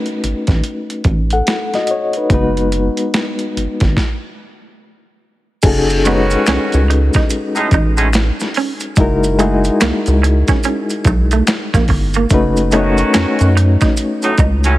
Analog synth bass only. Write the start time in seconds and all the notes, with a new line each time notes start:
0.23 A1
0.48 A1
1.05 A1
2.30 F#1
3.57 G#1
3.82 G#1
5.64 F#1
6.48 C#2
6.74 C#2
7.72 A1
8.97 F#1
9.82 C#2
10.07 C#2
11.05 B1
11.74 A#1
11.89 G1
12.31 F#1
13.15 F#2
13.41 F#2
14.39 C#2